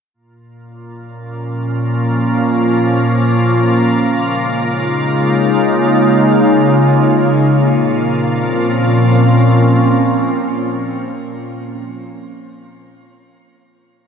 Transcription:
0.14 A#2 A#3 F4
0.58 C#4
0.86 F3
3.85 C#3
4.01 G#3
4.42 D#4
4.61 F4
7.52 A#2 A#3 F4
7.68 F3
7.83 C4
7.95 C#4

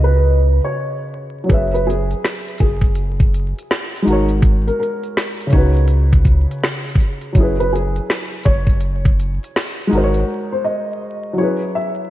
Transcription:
Already playing: C#2 C#3 C#4 F#4 B4 D#5
0.04 B4
0.64 C#5
1.44 F#3 C#4
1.49 F#1 G#4 B4, kick, closed hi-hat
1.54 E5
1.74 B4, closed hi-hat
1.87 G#4, closed hi-hat
2.11 closed hi-hat
2.24 finger snap, snare, closed hi-hat
2.48 closed hi-hat
2.58 F#1 G#4, kick, closed hi-hat
2.81 kick, closed hi-hat
2.95 closed hi-hat
3.20 kick, closed hi-hat
3.34 closed hi-hat
3.59 closed hi-hat
3.71 finger snap, snare, closed hi-hat
3.96 closed hi-hat
4.02 G#3 D#4
4.07 G#1 F#4 A#4, closed hi-hat
4.12 C#5
4.29 closed hi-hat
4.42 kick, closed hi-hat
4.67 A#4, closed hi-hat
4.79 A#4, closed hi-hat
5.03 closed hi-hat
5.17 finger snap, snare, closed hi-hat
5.41 closed hi-hat
5.47 C#3 C#4, closed hi-hat
5.52 C#2 D#4 F#4 C#5, kick
5.57 B4
5.77 closed hi-hat
5.88 closed hi-hat
6.13 kick, closed hi-hat
6.25 kick, closed hi-hat
6.51 closed hi-hat
6.63 finger snap, snare, closed hi-hat
6.89 closed hi-hat
6.95 kick
7.00 closed hi-hat
7.21 closed hi-hat
7.33 F#1 F#3 C#4, kick, closed hi-hat
7.38 E4 G#4
7.43 B4
7.60 B4, closed hi-hat
7.73 G#4, closed hi-hat
7.96 closed hi-hat
8.10 finger snap, snare, closed hi-hat
8.34 closed hi-hat
8.44 F#1 C#5, kick, closed hi-hat
8.67 kick, closed hi-hat
8.81 closed hi-hat
9.05 kick, closed hi-hat
9.20 closed hi-hat
9.44 closed hi-hat
9.56 finger snap, snare, closed hi-hat
9.82 closed hi-hat
9.87 G#3 D#4
9.92 G#1 F#4 A#4, closed hi-hat
9.97 C5
10.04 C#5
10.14 closed hi-hat
10.52 C5
10.65 D#5
11.33 F#3 C#4
11.38 E4 G#4 C#5
11.44 B4
11.75 E5

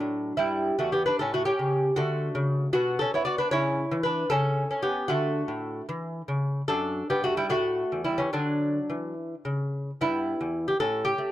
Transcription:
Already playing: F#3 D4
0.00 A2
0.37 G2 G3 E4
0.79 E2 A3 F#4
0.92 B3 G4
1.06 D4 B4
1.19 A2 C#4 A4
1.34 A3 F#4
1.45 C#4 G4
1.59 C#3
1.96 D3 A3 F#4
2.35 C#3
2.73 B2 B3 F#4
2.99 C#4 A4
3.14 B3 E4 C#5
3.25 F#4 D5
3.38 D4 B4
3.51 C#3 E4 C#5
3.91 E3
4.03 D4 B4
4.30 C#3 C#4 A4
4.71 C#4
4.82 B3 G4
5.08 D3 A3 F#4
5.48 A2
5.89 E3
6.28 C#3
6.68 F#2 D4 A4
7.10 G2 B3 G4
7.24 A3 F#4
7.37 G3 E4
7.50 A2 A3 F#4
7.92 E2
8.04 G3 E4
8.18 E3 C#4
8.33 D3 F#3 D4
8.90 E3
9.45 C#3
10.01 G2 B3 E4
10.41 E2
10.68 G4
10.80 A2 C#4 A4
11.05 G4
11.18 A3

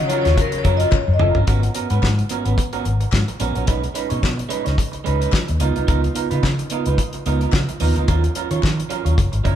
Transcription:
Already playing: C#3 F#3 F4
0.03 C#5
0.09 F#3 C#4 F4 A#4, closed hi-hat
0.22 D#2 C#4 F4 C#5, closed hi-hat
0.26 F#3, snare
0.37 A#4, muted clean electric guitar stroke, kick, closed hi-hat
0.52 muted clean electric guitar stroke, closed hi-hat
0.58 C#5
0.64 F#2 F#3 C#4 F4 A#4, kick, closed hi-hat
0.77 F#3 C#4 F4 A#4 D#5, closed hi-hat
0.92 C#5, muted clean electric guitar stroke, kick, clap, high tom
1.07 F#2, muted clean electric guitar stroke
1.14 D#5
1.19 F#1 F#3 C#4 F4 A#4, mid tom
1.35 G1 F#3 C#4 F4 A#4, floor tom
1.47 G#1 B3 C#4 F#4 A#4, kick, closed hi-hat
1.63 muted clean electric guitar stroke, closed hi-hat
1.74 B3 C#4 F#4 A#4, closed hi-hat
1.90 G#2 B3 C#4 F#4 B4, closed hi-hat
2.02 G#2, muted clean electric guitar stroke, kick, snare, clap
2.18 muted clean electric guitar stroke, closed hi-hat
2.29 B3 C#4 F#4 A#4, closed hi-hat
2.45 G#1 B3 C#4 F#4 B4, closed hi-hat
2.58 muted clean electric guitar stroke, kick, closed hi-hat
2.73 B3 C#4 F#4 A#4, closed hi-hat
2.85 G#1, muted clean electric guitar stroke, closed hi-hat
3.00 muted clean electric guitar stroke, closed hi-hat
3.12 G#2, muted clean electric guitar stroke, kick, snare, clap
3.28 muted clean electric guitar stroke, closed hi-hat
3.40 A#1 B3 C#4 F#4 A#4, closed hi-hat
3.55 A#1 B3 C#4 F#4 A#4, closed hi-hat
3.66 B1 G#3 C#4 D#4 B4, kick, closed hi-hat
3.82 muted clean electric guitar stroke, closed hi-hat
3.94 G#3 C#4 D#4 B4, closed hi-hat
4.09 B2 G#3 C#4 D#4 C#5, closed hi-hat
4.22 B2, muted clean electric guitar stroke, kick, snare, clap
4.37 muted clean electric guitar stroke, closed hi-hat
4.49 G#3 C#4 D#4 B4, closed hi-hat
4.65 C#2 G#3 C#4 D#4 C#5, snare, closed hi-hat
4.78 muted clean electric guitar stroke, kick, closed hi-hat
4.92 muted clean electric guitar stroke, closed hi-hat
5.04 C#2 G#3 C#4 D#4 B4, closed hi-hat
5.20 G#3 C#4 D#4 B4, closed hi-hat
5.32 muted clean electric guitar stroke, kick, snare, clap
5.48 D#2, muted clean electric guitar stroke, closed hi-hat
5.60 C#2 B3 D#4 F4 A#4, closed hi-hat
5.75 C2 B3 D#4 F4 A#4, closed hi-hat
5.87 C#2 B3 D#4 F4 A#4, kick, closed hi-hat
6.03 muted clean electric guitar stroke, closed hi-hat
6.15 B3 D#4 F4 A#4, closed hi-hat
6.31 C#3 B3 D#4 F4 B4, closed hi-hat
6.43 C#3, muted clean electric guitar stroke, kick, snare, clap
6.59 muted clean electric guitar stroke, closed hi-hat
6.70 B3 D#4 F4 A#4, closed hi-hat
6.86 C#2 B3 D#4 F4 B4, closed hi-hat
6.98 muted clean electric guitar stroke, kick, closed hi-hat
7.13 muted clean electric guitar stroke, closed hi-hat
7.26 C#2 B3 D#4 F4 A#4, closed hi-hat
7.41 B3 D#4 F4 A#4, closed hi-hat
7.52 C#3, muted clean electric guitar stroke, kick, snare, clap
7.69 muted clean electric guitar stroke, closed hi-hat
7.80 D#2 B3 D#4 F4 A#4, open hi-hat
7.96 D2 B3 D#4 F4 A#4, closed hi-hat
8.08 D#2 F#3 C#4 F4 A#4, kick, closed hi-hat
8.24 muted clean electric guitar stroke, closed hi-hat
8.35 F#3 C#4 F4 A#4, closed hi-hat
8.51 D#3 F#3 C#4 F4 C#5, closed hi-hat
8.62 D#3, muted clean electric guitar stroke, kick, snare, clap
8.77 muted clean electric guitar stroke, closed hi-hat
8.89 F#3 C#4 F4 A#4, closed hi-hat
9.05 D#2 F#3 C#4 F4 C#5, closed hi-hat
9.17 F#1, muted clean electric guitar stroke, kick, closed hi-hat
9.32 G#1, muted clean electric guitar stroke, closed hi-hat
9.44 F#1 G3 C#4 E4 A#4, kick, closed hi-hat

